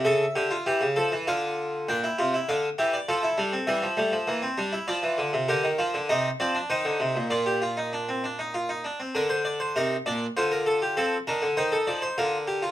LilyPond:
<<
  \new Staff \with { instrumentName = "Harpsichord" } { \time 3/4 \key d \minor \tempo 4 = 99 << { e''2 f''4 | g''4 f''8 e''16 d''16 a'4 | e''2 d''4 | \key bes \major bes'4 ees''8 d''8 c''4 |
d''2~ d''8 r8 | bes'16 c''16 d''16 c''16 bes'8 d''8 c''16 bes'16 a'16 g'16 | a'8 bes'8 c''16 a'16 d''16 c''16 bes'4 | } \\ { a'8 g'16 f'16 g'8 a'8 f'4 | d'16 e'16 f'16 e'16 d'8 g'8 f'16 e'16 d'16 c'16 | g8 a8 bes16 c'16 d'16 e'16 f'4 | g'8 f'8 ees'8 c'16 d'16 ees'4 |
f'16 g'16 f'16 ees'16 d'16 c'16 d'16 ees'16 f'16 ees'16 d'16 c'16 | d'4 ees'8 d'8 f'4 | c'8 d'8 ees'4 f'8 g'16 f'16 | } >> }
  \new Staff \with { instrumentName = "Harpsichord" } { \clef bass \time 3/4 \key d \minor cis8 d8 e16 cis16 f16 e16 d4 | bes,8 c8 d8 e8 f8 g8 | e16 f16 g16 f16 e8 g8 f16 e16 d16 c16 | \key bes \major d16 ees16 f16 d16 c8 f8 ees16 d16 c16 bes,16 |
bes,2~ bes,8 r8 | d4 c8 bes,8 d4 | f8 ees16 d16 ees8 f8 d4 | }
>>